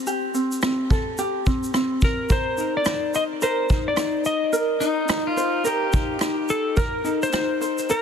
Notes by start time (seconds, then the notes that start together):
Already playing: C4 G4 A4
0.07 G4, shaker
0.34 C4, shaker
0.52 shaker
0.62 C4, cross-stick, shaker
0.91 A4, kick, shaker
1.18 G4, shaker
1.46 C4, kick, shaker
1.64 shaker
1.74 C4, cross-stick, shaker
2.01 A#4, kick, shaker
2.30 A#4 C5, kick, shaker
2.58 D#4, shaker
2.77 D5
2.85 D#4, cross-stick, clap, shaker
3.14 C5 D#5, shaker
3.42 A#4 C5, shaker
3.70 D#4, kick, shaker
3.88 D5
3.97 D#4, cross-stick, clap, shaker
4.25 D#5, shaker
4.53 A#4, shaker
4.80 D#4, shaker
5.09 D#4, cross-stick, clap, shaker
5.27 F4
5.37 C5, shaker
5.64 G4 A#4, shaker
5.93 D#4, kick, shaker
6.20 D#4, cross-stick, clap, shaker
6.49 A4, shaker
6.77 A#4, kick, shaker
7.04 D#4, shaker
7.23 C5, shaker
7.33 D#4, cross-stick, clap, shaker
7.61 C5, shaker
7.78 shaker
7.90 A#4, shaker